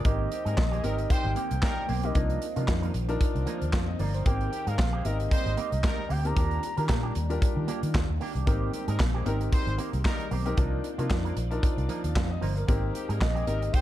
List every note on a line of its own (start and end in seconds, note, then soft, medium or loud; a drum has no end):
0.04 0.27 G#1 loud
0.04 6.32 D#3 medium
0.04 2.13 G#3 medium
0.04 0.29 A#3 medium
0.04 12.64 A#3 medium
0.04 0.62 C4 medium
0.04 6.32 C4 medium
0.04 0.30 C4 medium
0.04 0.62 D#4 medium
0.04 2.13 G4 medium
0.04 0.62 G4 medium
0.04 0.30 G4 medium
0.04 0.62 A#4 medium
0.04 1.12 D#5 loud
0.04 kick loud
0.04 closed hi-hat medium
0.31 0.43 D#3 medium
0.31 0.43 C4 medium
0.31 0.43 G4 medium
0.31 muted clean electric guitar stroke soft
0.31 closed hi-hat medium
0.45 0.55 G#2 medium
0.45 0.55 G3 medium
0.45 0.56 A#3 medium
0.45 0.56 C4 medium
0.45 0.55 D#4 medium
0.45 0.58 G#4 medium
0.45 0.55 A#4 medium
0.45 closed hi-hat soft
0.57 0.79 A#1 medium
0.57 muted clean electric guitar stroke soft
0.57 kick loud
0.57 snare loud
0.57 clap loud
0.71 0.82 D#3 medium
0.71 0.82 A#3 medium
0.71 0.83 C4 medium
0.71 0.82 C4 medium
0.71 0.83 G4 medium
0.71 0.82 G#4 medium
0.71 closed hi-hat soft
0.83 1.05 G#1 medium
0.83 0.96 G3 medium
0.83 1.60 C4 medium
0.83 1.60 D#4 medium
0.83 0.96 D#4 medium
0.83 1.60 G4 medium
0.83 0.96 A#4 medium
0.83 1.60 A#4 loud
0.83 muted clean electric guitar stroke medium
0.83 closed hi-hat medium
0.98 muted clean electric guitar stroke soft
0.98 closed hi-hat soft
1.09 1.31 G3 loud
1.09 1.31 D#4 loud
1.09 1.31 C5 loud
1.09 1.36 G5 loud
1.09 muted clean electric guitar stroke soft
1.09 kick loud
1.09 closed hi-hat loud
1.24 1.34 G#1 medium
1.24 muted clean electric guitar stroke soft
1.35 1.55 A#3 medium
1.35 1.51 C4 medium
1.35 1.49 G4 medium
1.35 2.06 G5 loud
1.35 closed hi-hat medium
1.51 1.61 C2 medium
1.51 muted clean electric guitar stroke soft
1.51 closed hi-hat medium
1.62 1.84 G3 loud
1.62 1.84 D#4 loud
1.62 1.84 A#4 loud
1.62 muted clean electric guitar stroke soft
1.62 kick loud
1.62 snare loud
1.62 clap loud
1.77 muted clean electric guitar stroke soft
1.88 2.11 B1 medium
1.88 2.04 A#3 medium
1.88 2.03 C4 loud
1.88 2.02 G4 medium
1.88 open hi-hat medium
2.03 2.14 A#3 medium
2.03 2.12 C4 medium
2.03 2.16 C4 medium
2.03 2.12 D#4 medium
2.03 2.16 G4 medium
2.03 2.12 G4 medium
2.03 2.12 A#4 medium
2.03 2.83 D#5 medium
2.03 closed hi-hat soft
2.15 2.37 C2 loud
2.15 2.40 F3 medium
2.15 2.40 A#3 loud
2.15 2.44 D4 medium
2.15 2.44 D#4 medium
2.15 2.40 D#4 medium
2.15 4.24 F4 medium
2.15 2.44 F4 medium
2.15 2.44 A#4 medium
2.15 kick loud
2.15 closed hi-hat medium
2.30 closed hi-hat soft
2.42 closed hi-hat medium
2.56 2.66 C3 medium
2.56 2.66 F3 medium
2.56 2.67 A#3 medium
2.56 2.93 D4 medium
2.56 2.93 D#4 medium
2.56 2.68 F4 medium
2.56 2.93 F4 medium
2.56 2.93 A#4 medium
2.56 closed hi-hat soft
2.68 2.90 F2 medium
2.68 kick loud
2.68 snare loud
2.68 clap medium
2.82 2.93 F3 medium
2.82 2.93 A#3 loud
2.82 2.94 D#4 medium
2.82 closed hi-hat soft
2.94 3.16 A#1 loud
2.94 closed hi-hat medium
3.09 3.84 D4 medium
3.09 3.85 D#4 medium
3.09 3.85 F4 medium
3.09 3.85 A#4 loud
3.09 muted clean electric guitar stroke medium
3.09 closed hi-hat soft
3.20 muted clean electric guitar stroke soft
3.20 kick loud
3.20 closed hi-hat loud
3.34 3.45 C2 medium
3.34 muted clean electric guitar stroke soft
3.34 closed hi-hat soft
3.46 3.66 F3 medium
3.46 3.62 A#3 medium
3.46 3.60 D#4 loud
3.46 closed hi-hat medium
3.61 3.73 D#2 medium
3.61 muted clean electric guitar stroke soft
3.61 closed hi-hat medium
3.73 3.95 F2 medium
3.73 3.87 F5 medium
3.73 muted clean electric guitar stroke medium
3.73 kick loud
3.73 snare loud
3.73 clap loud
3.88 3.99 D#5 medium
3.88 muted clean electric guitar stroke soft
3.99 4.21 G1 medium
3.99 4.15 F3 medium
3.99 4.14 A#3 loud
3.99 4.13 D#4 loud
3.99 4.14 D5 medium
3.99 open hi-hat medium
4.14 4.28 F3 medium
4.14 4.24 A#3 medium
4.14 4.26 D#4 medium
4.14 4.39 C5 medium
4.14 closed hi-hat soft
4.25 4.48 G#1 loud
4.25 6.34 G#3 medium
4.25 4.50 A#3 medium
4.25 4.83 C4 medium
4.25 4.50 C4 medium
4.25 4.83 D#4 medium
4.25 8.43 G4 medium
4.25 4.84 G4 medium
4.25 4.51 G4 medium
4.25 4.84 A#4 medium
4.25 4.69 G5 loud
4.25 kick loud
4.25 closed hi-hat medium
4.41 closed hi-hat soft
4.52 4.64 D#3 medium
4.52 4.64 C4 medium
4.52 4.64 G4 medium
4.52 muted clean electric guitar stroke soft
4.52 closed hi-hat medium
4.66 4.76 G#2 loud
4.66 4.77 G3 medium
4.66 4.77 A#3 soft
4.66 4.77 C4 medium
4.66 4.77 D#4 medium
4.66 4.79 G#4 medium
4.66 4.77 A#4 medium
4.66 5.07 F5 loud
4.66 closed hi-hat medium
4.78 5.00 A#1 medium
4.78 muted clean electric guitar stroke soft
4.78 kick loud
4.78 snare loud
4.78 clap medium
4.93 5.03 D#3 medium
4.93 5.03 A#3 medium
4.93 5.03 C4 medium
4.93 5.04 C4 medium
4.93 5.04 G4 medium
4.93 5.03 G#4 medium
5.04 5.27 G#1 medium
5.04 5.17 G3 medium
5.04 5.81 C4 medium
5.04 5.17 D#4 medium
5.04 5.81 D#4 medium
5.04 5.81 G4 medium
5.04 5.17 A#4 medium
5.04 5.81 A#4 medium
5.04 6.10 D#5 loud
5.04 muted clean electric guitar stroke soft
5.04 closed hi-hat medium
5.19 muted clean electric guitar stroke soft
5.19 closed hi-hat soft
5.31 5.52 G3 loud
5.31 5.52 D#4 loud
5.31 5.52 C5 loud
5.31 muted clean electric guitar stroke soft
5.31 kick loud
5.31 closed hi-hat medium
5.46 5.56 G#1 medium
5.46 muted clean electric guitar stroke soft
5.46 closed hi-hat soft
5.57 5.76 A#3 medium
5.57 5.72 C4 medium
5.57 5.71 G4 loud
5.57 closed hi-hat medium
5.72 5.82 C2 loud
5.72 muted clean electric guitar stroke soft
5.72 closed hi-hat soft
5.84 6.05 G3 loud
5.84 6.05 D#4 loud
5.84 6.05 A#4 loud
5.84 kick loud
5.84 snare loud
5.84 clap medium
5.98 muted clean electric guitar stroke medium
6.09 6.32 D2 medium
6.09 6.24 A#3 medium
6.09 6.24 C4 medium
6.09 6.23 G4 loud
6.09 6.24 G5 medium
6.09 open hi-hat medium
6.24 6.34 A#3 soft
6.24 6.33 C4 medium
6.24 6.36 C4 medium
6.24 6.33 D#4 medium
6.24 6.37 G4 medium
6.24 6.33 G4 medium
6.24 6.33 A#4 medium
6.24 7.27 A#5 loud
6.24 closed hi-hat soft
6.36 6.58 D#2 loud
6.36 12.64 D#3 medium
6.36 8.45 G3 medium
6.36 6.61 A#3 medium
6.36 6.65 D4 medium
6.36 8.45 D4 medium
6.36 6.61 D4 medium
6.36 6.65 F4 medium
6.36 6.65 G4 medium
6.36 6.62 G4 medium
6.36 6.65 A#4 medium
6.36 kick loud
6.36 closed hi-hat medium
6.51 closed hi-hat soft
6.62 muted clean electric guitar stroke soft
6.62 closed hi-hat medium
6.77 6.87 D#3 loud
6.77 6.87 A#3 medium
6.77 7.14 D4 medium
6.77 6.88 D4 medium
6.77 7.14 F4 medium
6.77 7.14 G4 medium
6.77 6.89 A#4 medium
6.77 7.14 A#4 medium
6.77 closed hi-hat soft
6.89 7.11 A#2 loud
6.89 muted clean electric guitar stroke soft
6.89 kick loud
6.89 snare loud
6.89 clap loud
7.03 7.14 A#3 medium
7.03 7.15 D4 medium
7.03 7.15 G4 medium
7.15 7.37 D#2 medium
7.15 closed hi-hat medium
7.30 8.05 D4 medium
7.30 8.05 F4 medium
7.30 8.06 G4 medium
7.30 8.06 A#4 loud
7.30 muted clean electric guitar stroke soft
7.30 closed hi-hat soft
7.41 muted clean electric guitar stroke soft
7.41 kick loud
7.41 closed hi-hat loud
7.56 7.66 D#3 loud
7.56 muted clean electric guitar stroke soft
7.67 7.87 A#3 medium
7.67 7.82 D4 medium
7.67 7.81 G4 loud
7.67 closed hi-hat medium
7.82 7.92 D#3 medium
7.82 muted clean electric guitar stroke soft
7.82 closed hi-hat medium
7.94 8.07 D#2 loud
7.94 muted clean electric guitar stroke soft
7.94 kick loud
7.94 snare loud
7.94 clap medium
8.09 8.19 D#2 medium
8.09 muted clean electric guitar stroke soft
8.21 8.36 A#3 medium
8.21 8.35 D4 medium
8.21 8.34 G4 loud
8.21 open hi-hat medium
8.35 8.45 C2 medium
8.35 8.45 A#3 soft
8.35 8.47 D4 medium
8.35 8.47 G4 medium
8.35 closed hi-hat soft
8.46 8.69 G#1 loud
8.46 10.56 G#3 medium
8.46 8.71 A#3 medium
8.46 9.04 C4 medium
8.46 13.81 C4 medium
8.46 8.72 C4 medium
8.46 9.04 D#4 medium
8.46 9.04 G4 medium
8.46 10.56 G4 medium
8.46 8.72 G4 medium
8.46 9.04 A#4 loud
8.46 kick loud
8.46 closed hi-hat medium
8.73 8.85 D#3 medium
8.73 8.85 C4 medium
8.73 8.85 G4 medium
8.73 muted clean electric guitar stroke soft
8.73 closed hi-hat medium
8.88 8.97 G#2 loud
8.88 8.97 G3 medium
8.88 8.98 A#3 soft
8.88 8.99 C4 soft
8.88 8.97 D#4 medium
8.88 9.00 G#4 medium
8.88 8.97 A#4 medium
8.88 closed hi-hat medium
8.99 9.21 A#1 medium
8.99 muted clean electric guitar stroke soft
8.99 kick loud
8.99 snare loud
8.99 clap medium
9.14 9.24 D#3 medium
9.14 9.25 A#3 medium
9.14 9.24 C4 medium
9.14 9.25 C4 medium
9.14 9.26 G4 medium
9.14 9.24 G#4 medium
9.25 9.48 G#1 medium
9.25 9.38 G3 medium
9.25 10.02 C4 medium
9.25 10.02 D#4 medium
9.25 9.38 D#4 medium
9.25 10.02 G4 medium
9.25 10.02 A#4 medium
9.25 9.38 A#4 medium
9.25 muted clean electric guitar stroke soft
9.25 closed hi-hat medium
9.41 muted clean electric guitar stroke medium
9.41 closed hi-hat soft
9.52 9.73 G3 loud
9.52 9.73 D#4 loud
9.52 9.73 C5 loud
9.52 muted clean electric guitar stroke soft
9.52 kick loud
9.52 closed hi-hat loud
9.67 9.76 G#1 medium
9.67 muted clean electric guitar stroke soft
9.67 closed hi-hat soft
9.78 9.97 A#3 medium
9.78 9.93 C4 medium
9.78 9.92 G4 medium
9.78 closed hi-hat medium
9.93 10.03 C2 medium
9.93 muted clean electric guitar stroke soft
9.93 closed hi-hat medium
10.05 10.26 G3 loud
10.05 10.26 D#4 loud
10.05 10.26 A#4 loud
10.05 muted clean electric guitar stroke soft
10.05 kick loud
10.05 snare loud
10.05 clap medium
10.20 muted clean electric guitar stroke medium
10.20 closed hi-hat soft
10.31 10.53 B1 medium
10.31 10.46 A#3 medium
10.31 10.45 C4 loud
10.31 10.44 G4 loud
10.31 open hi-hat medium
10.45 10.57 A#3 soft
10.45 10.54 C4 medium
10.45 10.59 C4 medium
10.45 10.54 D#4 medium
10.45 10.58 G4 medium
10.45 10.54 G4 medium
10.45 10.54 A#4 loud
10.45 closed hi-hat soft
10.57 10.79 C2 medium
10.57 10.82 F3 medium
10.57 10.82 A#3 medium
10.57 10.86 D4 loud
10.57 10.86 D#4 medium
10.57 10.83 D#4 medium
10.57 10.86 F4 medium
10.57 12.66 F4 medium
10.57 10.87 A#4 loud
10.57 12.66 D5 medium
10.57 kick loud
10.57 closed hi-hat medium
10.84 muted clean electric guitar stroke soft
10.84 closed hi-hat medium
10.98 11.08 C3 medium
10.98 11.09 F3 medium
10.98 11.09 A#3 medium
10.98 11.35 D4 medium
10.98 11.35 D#4 medium
10.98 11.11 F4 medium
10.98 11.35 F4 medium
10.98 11.35 A#4 medium
10.98 closed hi-hat medium
11.10 11.32 F2 medium
11.10 kick loud
11.10 snare loud
11.10 clap medium
11.24 11.35 F3 medium
11.24 11.36 A#3 medium
11.24 11.36 D#4 medium
11.24 closed hi-hat soft
11.36 11.58 A#1 medium
11.36 muted clean electric guitar stroke soft
11.36 closed hi-hat medium
11.51 12.26 D4 medium
11.51 12.27 D#4 medium
11.51 12.27 F4 medium
11.51 12.16 A#4 medium
11.51 muted clean electric guitar stroke soft
11.51 closed hi-hat soft
11.62 muted clean electric guitar stroke soft
11.62 kick loud
11.62 closed hi-hat loud
11.77 11.87 C2 medium
11.77 muted clean electric guitar stroke medium
11.77 closed hi-hat soft
11.89 12.08 F3 medium
11.89 12.04 A#3 medium
11.89 12.02 D#4 medium
11.89 closed hi-hat medium
12.03 12.16 D#2 medium
12.03 muted clean electric guitar stroke soft
12.03 closed hi-hat medium
12.15 12.37 F2 medium
12.15 12.29 F5 medium
12.15 muted clean electric guitar stroke soft
12.15 kick loud
12.15 snare loud
12.15 clap loud
12.30 12.41 D#5 medium
12.30 muted clean electric guitar stroke soft
12.41 12.63 G1 medium
12.41 12.57 F3 loud
12.41 12.56 A#3 medium
12.41 12.55 D#4 loud
12.41 12.56 C5 medium
12.41 open hi-hat medium
12.56 12.70 F3 medium
12.56 12.66 A#3 medium
12.56 12.68 D#4 medium
12.56 12.67 A#4 medium
12.56 closed hi-hat soft
12.67 12.90 G#1 loud
12.67 13.81 D#3 medium
12.67 13.81 G#3 medium
12.67 12.92 A#3 medium
12.67 13.81 A#3 medium
12.67 13.25 C4 loud
12.67 12.93 C4 medium
12.67 13.26 D#4 medium
12.67 13.81 G4 medium
12.67 13.26 G4 medium
12.67 12.93 G4 medium
12.67 13.26 A#4 loud
12.67 kick loud
12.67 closed hi-hat medium
12.94 13.06 D#3 medium
12.94 13.06 C4 medium
12.94 13.06 G4 medium
12.94 muted clean electric guitar stroke soft
12.94 closed hi-hat medium
13.09 13.19 G#2 loud
13.09 13.19 G3 medium
13.09 13.19 A#3 medium
13.09 13.20 C4 medium
13.09 13.18 D#4 medium
13.09 13.22 G#4 medium
13.09 13.19 A#4 medium
13.09 closed hi-hat soft
13.21 13.43 A#1 medium
13.21 13.75 D#5 loud
13.21 kick loud
13.21 snare loud
13.21 clap medium
13.35 13.45 D#3 medium
13.35 13.46 A#3 medium
13.35 13.45 C4 medium
13.35 13.46 C4 medium
13.35 13.47 G4 medium
13.35 13.45 G#4 medium
13.35 closed hi-hat soft
13.46 13.69 G#1 medium
13.46 13.59 G3 medium
13.46 13.81 C4 medium
13.46 13.81 D#4 medium
13.46 13.59 D#4 medium
13.46 13.81 G4 medium
13.46 13.59 A#4 medium
13.46 13.81 A#4 medium
13.46 muted clean electric guitar stroke soft
13.46 closed hi-hat medium
13.62 muted clean electric guitar stroke medium
13.62 closed hi-hat soft
13.73 13.81 G3 loud
13.73 13.81 D#4 loud
13.73 13.81 C5 loud
13.73 13.81 G5 loud
13.73 muted clean electric guitar stroke soft
13.73 kick loud
13.73 closed hi-hat medium